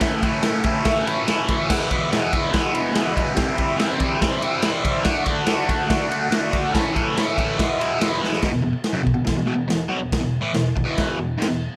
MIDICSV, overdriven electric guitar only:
0, 0, Header, 1, 3, 480
1, 0, Start_track
1, 0, Tempo, 420463
1, 1, Time_signature, 4, 2, 24, 8
1, 8641, Tempo, 425532
1, 13368, End_track
2, 0, Start_track
2, 0, Title_t, "Overdriven electric guitar"
2, 0, Program_c, 0, 29
2, 0, Note_on_c, 0, 45, 83
2, 10, Note_on_c, 0, 52, 95
2, 20, Note_on_c, 0, 57, 90
2, 24, Note_on_c, 0, 61, 104
2, 25, Note_on_c, 0, 64, 104
2, 239, Note_off_c, 0, 45, 0
2, 249, Note_off_c, 0, 52, 0
2, 252, Note_on_c, 0, 45, 88
2, 253, Note_off_c, 0, 57, 0
2, 254, Note_on_c, 0, 52, 90
2, 255, Note_off_c, 0, 61, 0
2, 266, Note_on_c, 0, 57, 86
2, 269, Note_off_c, 0, 64, 0
2, 269, Note_on_c, 0, 61, 89
2, 274, Note_on_c, 0, 64, 95
2, 473, Note_off_c, 0, 45, 0
2, 484, Note_off_c, 0, 57, 0
2, 487, Note_on_c, 0, 45, 105
2, 492, Note_off_c, 0, 52, 0
2, 492, Note_off_c, 0, 61, 0
2, 496, Note_on_c, 0, 52, 96
2, 498, Note_on_c, 0, 57, 112
2, 506, Note_off_c, 0, 64, 0
2, 506, Note_on_c, 0, 61, 101
2, 511, Note_on_c, 0, 64, 109
2, 707, Note_off_c, 0, 45, 0
2, 721, Note_on_c, 0, 45, 75
2, 727, Note_off_c, 0, 57, 0
2, 731, Note_off_c, 0, 52, 0
2, 736, Note_on_c, 0, 52, 84
2, 739, Note_off_c, 0, 61, 0
2, 740, Note_on_c, 0, 57, 89
2, 746, Note_off_c, 0, 64, 0
2, 751, Note_on_c, 0, 64, 93
2, 753, Note_on_c, 0, 61, 92
2, 937, Note_off_c, 0, 45, 0
2, 951, Note_on_c, 0, 45, 89
2, 958, Note_off_c, 0, 57, 0
2, 961, Note_off_c, 0, 52, 0
2, 966, Note_off_c, 0, 61, 0
2, 966, Note_on_c, 0, 52, 100
2, 972, Note_on_c, 0, 57, 100
2, 977, Note_off_c, 0, 64, 0
2, 980, Note_on_c, 0, 61, 101
2, 981, Note_on_c, 0, 64, 110
2, 1196, Note_off_c, 0, 45, 0
2, 1207, Note_off_c, 0, 52, 0
2, 1210, Note_on_c, 0, 45, 79
2, 1212, Note_on_c, 0, 52, 86
2, 1213, Note_off_c, 0, 57, 0
2, 1215, Note_off_c, 0, 61, 0
2, 1227, Note_on_c, 0, 57, 91
2, 1229, Note_on_c, 0, 61, 81
2, 1230, Note_off_c, 0, 64, 0
2, 1235, Note_on_c, 0, 64, 93
2, 1438, Note_off_c, 0, 45, 0
2, 1452, Note_on_c, 0, 45, 97
2, 1462, Note_off_c, 0, 57, 0
2, 1465, Note_off_c, 0, 52, 0
2, 1467, Note_off_c, 0, 61, 0
2, 1469, Note_on_c, 0, 52, 101
2, 1476, Note_off_c, 0, 64, 0
2, 1476, Note_on_c, 0, 57, 98
2, 1480, Note_on_c, 0, 61, 112
2, 1481, Note_on_c, 0, 64, 119
2, 1676, Note_off_c, 0, 45, 0
2, 1690, Note_on_c, 0, 45, 77
2, 1692, Note_off_c, 0, 57, 0
2, 1694, Note_off_c, 0, 61, 0
2, 1696, Note_off_c, 0, 52, 0
2, 1701, Note_on_c, 0, 52, 96
2, 1705, Note_on_c, 0, 57, 83
2, 1708, Note_on_c, 0, 61, 90
2, 1713, Note_off_c, 0, 64, 0
2, 1718, Note_on_c, 0, 64, 90
2, 1910, Note_off_c, 0, 45, 0
2, 1917, Note_off_c, 0, 57, 0
2, 1919, Note_off_c, 0, 61, 0
2, 1923, Note_on_c, 0, 40, 95
2, 1927, Note_off_c, 0, 52, 0
2, 1929, Note_on_c, 0, 47, 83
2, 1932, Note_on_c, 0, 52, 92
2, 1937, Note_on_c, 0, 56, 93
2, 1951, Note_on_c, 0, 59, 90
2, 1953, Note_off_c, 0, 64, 0
2, 1957, Note_on_c, 0, 64, 97
2, 2152, Note_off_c, 0, 40, 0
2, 2162, Note_off_c, 0, 47, 0
2, 2166, Note_on_c, 0, 40, 86
2, 2174, Note_off_c, 0, 52, 0
2, 2174, Note_off_c, 0, 56, 0
2, 2175, Note_on_c, 0, 47, 86
2, 2179, Note_on_c, 0, 52, 94
2, 2182, Note_off_c, 0, 59, 0
2, 2188, Note_on_c, 0, 56, 84
2, 2196, Note_off_c, 0, 64, 0
2, 2196, Note_on_c, 0, 59, 85
2, 2201, Note_on_c, 0, 64, 98
2, 2376, Note_off_c, 0, 40, 0
2, 2385, Note_off_c, 0, 47, 0
2, 2389, Note_on_c, 0, 40, 94
2, 2398, Note_on_c, 0, 47, 96
2, 2399, Note_off_c, 0, 52, 0
2, 2404, Note_on_c, 0, 52, 97
2, 2407, Note_off_c, 0, 56, 0
2, 2409, Note_off_c, 0, 59, 0
2, 2420, Note_off_c, 0, 64, 0
2, 2420, Note_on_c, 0, 56, 112
2, 2423, Note_on_c, 0, 59, 112
2, 2424, Note_on_c, 0, 64, 110
2, 2624, Note_off_c, 0, 40, 0
2, 2631, Note_off_c, 0, 47, 0
2, 2637, Note_on_c, 0, 40, 90
2, 2645, Note_on_c, 0, 47, 79
2, 2649, Note_off_c, 0, 56, 0
2, 2656, Note_off_c, 0, 52, 0
2, 2657, Note_off_c, 0, 59, 0
2, 2660, Note_on_c, 0, 52, 91
2, 2663, Note_on_c, 0, 56, 92
2, 2671, Note_on_c, 0, 59, 89
2, 2672, Note_off_c, 0, 64, 0
2, 2676, Note_on_c, 0, 64, 102
2, 2858, Note_off_c, 0, 40, 0
2, 2863, Note_off_c, 0, 47, 0
2, 2871, Note_off_c, 0, 52, 0
2, 2871, Note_on_c, 0, 40, 105
2, 2877, Note_on_c, 0, 47, 98
2, 2879, Note_off_c, 0, 56, 0
2, 2885, Note_on_c, 0, 52, 107
2, 2888, Note_off_c, 0, 59, 0
2, 2890, Note_off_c, 0, 64, 0
2, 2893, Note_on_c, 0, 56, 99
2, 2901, Note_on_c, 0, 59, 98
2, 2903, Note_on_c, 0, 64, 112
2, 3097, Note_off_c, 0, 40, 0
2, 3102, Note_off_c, 0, 47, 0
2, 3103, Note_off_c, 0, 52, 0
2, 3111, Note_on_c, 0, 40, 87
2, 3116, Note_off_c, 0, 56, 0
2, 3116, Note_on_c, 0, 47, 88
2, 3117, Note_on_c, 0, 52, 83
2, 3122, Note_off_c, 0, 59, 0
2, 3128, Note_off_c, 0, 64, 0
2, 3129, Note_on_c, 0, 56, 92
2, 3136, Note_on_c, 0, 59, 92
2, 3141, Note_on_c, 0, 64, 90
2, 3334, Note_off_c, 0, 40, 0
2, 3335, Note_off_c, 0, 47, 0
2, 3340, Note_off_c, 0, 52, 0
2, 3348, Note_on_c, 0, 40, 89
2, 3349, Note_on_c, 0, 47, 97
2, 3350, Note_off_c, 0, 56, 0
2, 3353, Note_on_c, 0, 52, 104
2, 3355, Note_off_c, 0, 59, 0
2, 3361, Note_off_c, 0, 64, 0
2, 3364, Note_on_c, 0, 56, 104
2, 3369, Note_on_c, 0, 59, 102
2, 3375, Note_on_c, 0, 64, 113
2, 3571, Note_off_c, 0, 40, 0
2, 3577, Note_off_c, 0, 47, 0
2, 3585, Note_on_c, 0, 40, 84
2, 3587, Note_off_c, 0, 52, 0
2, 3589, Note_off_c, 0, 56, 0
2, 3589, Note_off_c, 0, 59, 0
2, 3591, Note_on_c, 0, 47, 86
2, 3600, Note_on_c, 0, 52, 87
2, 3603, Note_on_c, 0, 56, 86
2, 3603, Note_on_c, 0, 59, 99
2, 3605, Note_off_c, 0, 64, 0
2, 3619, Note_on_c, 0, 64, 88
2, 3815, Note_off_c, 0, 47, 0
2, 3816, Note_off_c, 0, 40, 0
2, 3816, Note_off_c, 0, 52, 0
2, 3819, Note_on_c, 0, 48, 96
2, 3825, Note_off_c, 0, 56, 0
2, 3825, Note_off_c, 0, 59, 0
2, 3830, Note_on_c, 0, 52, 99
2, 3831, Note_on_c, 0, 55, 88
2, 3833, Note_off_c, 0, 64, 0
2, 3843, Note_on_c, 0, 60, 107
2, 3847, Note_on_c, 0, 64, 104
2, 4055, Note_off_c, 0, 48, 0
2, 4064, Note_off_c, 0, 55, 0
2, 4066, Note_off_c, 0, 52, 0
2, 4069, Note_on_c, 0, 48, 80
2, 4073, Note_off_c, 0, 60, 0
2, 4078, Note_on_c, 0, 55, 90
2, 4080, Note_off_c, 0, 64, 0
2, 4080, Note_on_c, 0, 52, 80
2, 4087, Note_on_c, 0, 60, 90
2, 4094, Note_on_c, 0, 64, 99
2, 4290, Note_off_c, 0, 48, 0
2, 4295, Note_off_c, 0, 52, 0
2, 4304, Note_on_c, 0, 48, 94
2, 4307, Note_off_c, 0, 55, 0
2, 4308, Note_on_c, 0, 52, 97
2, 4310, Note_off_c, 0, 60, 0
2, 4319, Note_off_c, 0, 64, 0
2, 4321, Note_on_c, 0, 55, 101
2, 4324, Note_on_c, 0, 60, 106
2, 4332, Note_on_c, 0, 64, 108
2, 4524, Note_off_c, 0, 48, 0
2, 4537, Note_off_c, 0, 52, 0
2, 4538, Note_off_c, 0, 55, 0
2, 4538, Note_on_c, 0, 48, 87
2, 4547, Note_off_c, 0, 60, 0
2, 4551, Note_on_c, 0, 52, 81
2, 4551, Note_on_c, 0, 55, 84
2, 4553, Note_off_c, 0, 64, 0
2, 4560, Note_on_c, 0, 60, 97
2, 4567, Note_on_c, 0, 64, 93
2, 4775, Note_off_c, 0, 48, 0
2, 4789, Note_on_c, 0, 48, 101
2, 4794, Note_off_c, 0, 52, 0
2, 4796, Note_off_c, 0, 55, 0
2, 4803, Note_off_c, 0, 60, 0
2, 4808, Note_on_c, 0, 52, 99
2, 4809, Note_on_c, 0, 55, 101
2, 4813, Note_off_c, 0, 64, 0
2, 4816, Note_on_c, 0, 60, 102
2, 4827, Note_on_c, 0, 64, 116
2, 5018, Note_off_c, 0, 48, 0
2, 5032, Note_off_c, 0, 52, 0
2, 5032, Note_on_c, 0, 48, 85
2, 5042, Note_off_c, 0, 55, 0
2, 5044, Note_off_c, 0, 60, 0
2, 5046, Note_on_c, 0, 52, 76
2, 5047, Note_off_c, 0, 64, 0
2, 5055, Note_on_c, 0, 55, 89
2, 5058, Note_on_c, 0, 60, 92
2, 5061, Note_on_c, 0, 64, 98
2, 5259, Note_off_c, 0, 48, 0
2, 5269, Note_off_c, 0, 52, 0
2, 5273, Note_on_c, 0, 48, 105
2, 5274, Note_off_c, 0, 55, 0
2, 5282, Note_on_c, 0, 52, 106
2, 5288, Note_on_c, 0, 55, 105
2, 5290, Note_off_c, 0, 60, 0
2, 5294, Note_off_c, 0, 64, 0
2, 5304, Note_on_c, 0, 60, 110
2, 5308, Note_on_c, 0, 64, 113
2, 5495, Note_off_c, 0, 48, 0
2, 5509, Note_off_c, 0, 55, 0
2, 5509, Note_on_c, 0, 48, 79
2, 5510, Note_off_c, 0, 52, 0
2, 5521, Note_off_c, 0, 64, 0
2, 5523, Note_off_c, 0, 60, 0
2, 5523, Note_on_c, 0, 55, 89
2, 5524, Note_on_c, 0, 52, 79
2, 5534, Note_on_c, 0, 64, 88
2, 5537, Note_on_c, 0, 60, 90
2, 5738, Note_off_c, 0, 48, 0
2, 5745, Note_off_c, 0, 52, 0
2, 5745, Note_off_c, 0, 55, 0
2, 5751, Note_off_c, 0, 64, 0
2, 5751, Note_on_c, 0, 50, 96
2, 5752, Note_off_c, 0, 60, 0
2, 5759, Note_on_c, 0, 57, 87
2, 5762, Note_on_c, 0, 62, 101
2, 5777, Note_on_c, 0, 66, 101
2, 5976, Note_off_c, 0, 50, 0
2, 5989, Note_off_c, 0, 57, 0
2, 5990, Note_on_c, 0, 50, 95
2, 5997, Note_off_c, 0, 62, 0
2, 6003, Note_on_c, 0, 57, 88
2, 6006, Note_off_c, 0, 66, 0
2, 6010, Note_on_c, 0, 62, 87
2, 6020, Note_on_c, 0, 66, 104
2, 6211, Note_off_c, 0, 50, 0
2, 6224, Note_on_c, 0, 50, 95
2, 6227, Note_off_c, 0, 57, 0
2, 6227, Note_off_c, 0, 62, 0
2, 6231, Note_off_c, 0, 66, 0
2, 6240, Note_on_c, 0, 57, 105
2, 6241, Note_on_c, 0, 62, 110
2, 6244, Note_on_c, 0, 66, 117
2, 6464, Note_off_c, 0, 50, 0
2, 6467, Note_off_c, 0, 57, 0
2, 6475, Note_off_c, 0, 62, 0
2, 6478, Note_on_c, 0, 50, 84
2, 6480, Note_off_c, 0, 66, 0
2, 6481, Note_on_c, 0, 57, 91
2, 6489, Note_on_c, 0, 62, 95
2, 6493, Note_on_c, 0, 66, 102
2, 6691, Note_off_c, 0, 50, 0
2, 6704, Note_off_c, 0, 57, 0
2, 6705, Note_off_c, 0, 62, 0
2, 6705, Note_on_c, 0, 50, 94
2, 6717, Note_on_c, 0, 57, 108
2, 6718, Note_on_c, 0, 62, 105
2, 6720, Note_off_c, 0, 66, 0
2, 6733, Note_on_c, 0, 66, 107
2, 6938, Note_off_c, 0, 50, 0
2, 6948, Note_off_c, 0, 57, 0
2, 6952, Note_on_c, 0, 50, 83
2, 6955, Note_off_c, 0, 62, 0
2, 6960, Note_off_c, 0, 66, 0
2, 6961, Note_on_c, 0, 57, 96
2, 6969, Note_on_c, 0, 62, 90
2, 6973, Note_on_c, 0, 66, 93
2, 7159, Note_off_c, 0, 50, 0
2, 7171, Note_off_c, 0, 57, 0
2, 7173, Note_on_c, 0, 50, 91
2, 7175, Note_off_c, 0, 62, 0
2, 7185, Note_on_c, 0, 57, 111
2, 7189, Note_on_c, 0, 62, 112
2, 7190, Note_off_c, 0, 66, 0
2, 7204, Note_on_c, 0, 66, 112
2, 7406, Note_off_c, 0, 50, 0
2, 7418, Note_off_c, 0, 57, 0
2, 7420, Note_on_c, 0, 50, 83
2, 7424, Note_off_c, 0, 62, 0
2, 7424, Note_off_c, 0, 66, 0
2, 7432, Note_on_c, 0, 57, 94
2, 7438, Note_on_c, 0, 62, 86
2, 7438, Note_on_c, 0, 66, 103
2, 7655, Note_off_c, 0, 50, 0
2, 7661, Note_off_c, 0, 57, 0
2, 7664, Note_off_c, 0, 62, 0
2, 7664, Note_off_c, 0, 66, 0
2, 7667, Note_on_c, 0, 45, 87
2, 7681, Note_on_c, 0, 52, 89
2, 7689, Note_on_c, 0, 57, 101
2, 7690, Note_on_c, 0, 61, 98
2, 7697, Note_on_c, 0, 64, 97
2, 7900, Note_off_c, 0, 45, 0
2, 7910, Note_off_c, 0, 52, 0
2, 7913, Note_on_c, 0, 45, 89
2, 7915, Note_off_c, 0, 57, 0
2, 7924, Note_on_c, 0, 52, 92
2, 7925, Note_off_c, 0, 61, 0
2, 7929, Note_on_c, 0, 57, 92
2, 7931, Note_off_c, 0, 64, 0
2, 7939, Note_on_c, 0, 61, 93
2, 7945, Note_on_c, 0, 64, 96
2, 8148, Note_off_c, 0, 45, 0
2, 8157, Note_off_c, 0, 52, 0
2, 8161, Note_on_c, 0, 45, 101
2, 8165, Note_off_c, 0, 57, 0
2, 8171, Note_on_c, 0, 52, 109
2, 8175, Note_off_c, 0, 61, 0
2, 8179, Note_on_c, 0, 57, 94
2, 8183, Note_off_c, 0, 64, 0
2, 8189, Note_on_c, 0, 61, 97
2, 8197, Note_on_c, 0, 64, 107
2, 8395, Note_off_c, 0, 45, 0
2, 8406, Note_off_c, 0, 52, 0
2, 8409, Note_on_c, 0, 45, 83
2, 8411, Note_off_c, 0, 57, 0
2, 8420, Note_on_c, 0, 52, 86
2, 8421, Note_off_c, 0, 61, 0
2, 8425, Note_off_c, 0, 64, 0
2, 8425, Note_on_c, 0, 57, 85
2, 8435, Note_on_c, 0, 61, 86
2, 8438, Note_on_c, 0, 64, 96
2, 8632, Note_off_c, 0, 45, 0
2, 8637, Note_off_c, 0, 52, 0
2, 8640, Note_off_c, 0, 57, 0
2, 8643, Note_on_c, 0, 40, 100
2, 8644, Note_off_c, 0, 61, 0
2, 8646, Note_off_c, 0, 64, 0
2, 8649, Note_on_c, 0, 47, 98
2, 8661, Note_on_c, 0, 52, 101
2, 8667, Note_on_c, 0, 56, 104
2, 8676, Note_on_c, 0, 59, 104
2, 8681, Note_on_c, 0, 64, 107
2, 8874, Note_off_c, 0, 40, 0
2, 8881, Note_off_c, 0, 47, 0
2, 8888, Note_on_c, 0, 40, 80
2, 8891, Note_off_c, 0, 52, 0
2, 8894, Note_on_c, 0, 47, 85
2, 8897, Note_off_c, 0, 59, 0
2, 8898, Note_off_c, 0, 56, 0
2, 8903, Note_off_c, 0, 64, 0
2, 8905, Note_on_c, 0, 52, 81
2, 8910, Note_on_c, 0, 59, 92
2, 8911, Note_on_c, 0, 56, 90
2, 8917, Note_on_c, 0, 64, 99
2, 9094, Note_off_c, 0, 40, 0
2, 9105, Note_off_c, 0, 47, 0
2, 9107, Note_on_c, 0, 40, 91
2, 9110, Note_off_c, 0, 52, 0
2, 9116, Note_off_c, 0, 56, 0
2, 9119, Note_on_c, 0, 47, 104
2, 9122, Note_off_c, 0, 59, 0
2, 9123, Note_on_c, 0, 52, 98
2, 9129, Note_off_c, 0, 64, 0
2, 9129, Note_on_c, 0, 56, 95
2, 9135, Note_on_c, 0, 59, 105
2, 9143, Note_on_c, 0, 64, 106
2, 9338, Note_off_c, 0, 40, 0
2, 9340, Note_off_c, 0, 47, 0
2, 9352, Note_on_c, 0, 40, 92
2, 9353, Note_on_c, 0, 47, 82
2, 9354, Note_off_c, 0, 52, 0
2, 9359, Note_off_c, 0, 56, 0
2, 9359, Note_off_c, 0, 59, 0
2, 9368, Note_on_c, 0, 52, 87
2, 9370, Note_off_c, 0, 64, 0
2, 9373, Note_on_c, 0, 56, 87
2, 9373, Note_on_c, 0, 59, 87
2, 9384, Note_on_c, 0, 64, 97
2, 9580, Note_off_c, 0, 40, 0
2, 9580, Note_off_c, 0, 47, 0
2, 9588, Note_off_c, 0, 52, 0
2, 9590, Note_off_c, 0, 56, 0
2, 9590, Note_off_c, 0, 59, 0
2, 9596, Note_off_c, 0, 64, 0
2, 9601, Note_on_c, 0, 40, 81
2, 9612, Note_on_c, 0, 47, 104
2, 9699, Note_off_c, 0, 40, 0
2, 9709, Note_off_c, 0, 47, 0
2, 9712, Note_on_c, 0, 40, 58
2, 9723, Note_on_c, 0, 47, 71
2, 9816, Note_off_c, 0, 40, 0
2, 9823, Note_off_c, 0, 47, 0
2, 9830, Note_on_c, 0, 40, 64
2, 9837, Note_on_c, 0, 47, 69
2, 9938, Note_off_c, 0, 40, 0
2, 9956, Note_off_c, 0, 47, 0
2, 10175, Note_on_c, 0, 42, 101
2, 10186, Note_on_c, 0, 49, 98
2, 10288, Note_off_c, 0, 49, 0
2, 10290, Note_off_c, 0, 42, 0
2, 10292, Note_on_c, 0, 47, 70
2, 10294, Note_on_c, 0, 40, 65
2, 10402, Note_off_c, 0, 40, 0
2, 10406, Note_off_c, 0, 47, 0
2, 10415, Note_on_c, 0, 40, 66
2, 10420, Note_on_c, 0, 47, 79
2, 10523, Note_off_c, 0, 47, 0
2, 10525, Note_off_c, 0, 40, 0
2, 10536, Note_on_c, 0, 47, 70
2, 10539, Note_on_c, 0, 40, 66
2, 10647, Note_off_c, 0, 40, 0
2, 10660, Note_off_c, 0, 47, 0
2, 10660, Note_on_c, 0, 40, 60
2, 10673, Note_on_c, 0, 47, 69
2, 10766, Note_off_c, 0, 40, 0
2, 10776, Note_off_c, 0, 47, 0
2, 10779, Note_on_c, 0, 40, 81
2, 10789, Note_on_c, 0, 47, 101
2, 10871, Note_off_c, 0, 40, 0
2, 10872, Note_off_c, 0, 47, 0
2, 10885, Note_on_c, 0, 40, 62
2, 10885, Note_on_c, 0, 47, 62
2, 11011, Note_off_c, 0, 40, 0
2, 11014, Note_off_c, 0, 47, 0
2, 11025, Note_on_c, 0, 40, 69
2, 11028, Note_on_c, 0, 47, 69
2, 11222, Note_off_c, 0, 40, 0
2, 11224, Note_off_c, 0, 47, 0
2, 11256, Note_on_c, 0, 47, 96
2, 11261, Note_on_c, 0, 54, 96
2, 11359, Note_off_c, 0, 47, 0
2, 11361, Note_on_c, 0, 40, 65
2, 11373, Note_on_c, 0, 47, 69
2, 11381, Note_off_c, 0, 54, 0
2, 11571, Note_off_c, 0, 40, 0
2, 11576, Note_off_c, 0, 47, 0
2, 11608, Note_on_c, 0, 40, 62
2, 11621, Note_on_c, 0, 47, 63
2, 11814, Note_off_c, 0, 40, 0
2, 11821, Note_off_c, 0, 47, 0
2, 11845, Note_on_c, 0, 45, 84
2, 11856, Note_on_c, 0, 52, 85
2, 11974, Note_off_c, 0, 45, 0
2, 11980, Note_off_c, 0, 52, 0
2, 11986, Note_on_c, 0, 47, 68
2, 11988, Note_on_c, 0, 40, 60
2, 12184, Note_off_c, 0, 47, 0
2, 12185, Note_off_c, 0, 40, 0
2, 12236, Note_on_c, 0, 40, 61
2, 12241, Note_on_c, 0, 47, 69
2, 12318, Note_off_c, 0, 40, 0
2, 12332, Note_on_c, 0, 40, 94
2, 12335, Note_off_c, 0, 47, 0
2, 12348, Note_on_c, 0, 47, 90
2, 12353, Note_on_c, 0, 52, 101
2, 12699, Note_off_c, 0, 40, 0
2, 12707, Note_off_c, 0, 47, 0
2, 12710, Note_off_c, 0, 52, 0
2, 12711, Note_on_c, 0, 40, 68
2, 12724, Note_on_c, 0, 47, 71
2, 12908, Note_off_c, 0, 40, 0
2, 12915, Note_off_c, 0, 47, 0
2, 12935, Note_on_c, 0, 44, 96
2, 12943, Note_on_c, 0, 51, 100
2, 13051, Note_off_c, 0, 44, 0
2, 13056, Note_on_c, 0, 40, 65
2, 13059, Note_off_c, 0, 51, 0
2, 13064, Note_on_c, 0, 47, 69
2, 13261, Note_off_c, 0, 40, 0
2, 13265, Note_off_c, 0, 47, 0
2, 13368, End_track
3, 0, Start_track
3, 0, Title_t, "Muted overdriven electric guitar strokes"
3, 9951, Note_on_c, 9, 29, 52
3, 10064, Note_off_c, 9, 29, 0
3, 13368, End_track
0, 0, End_of_file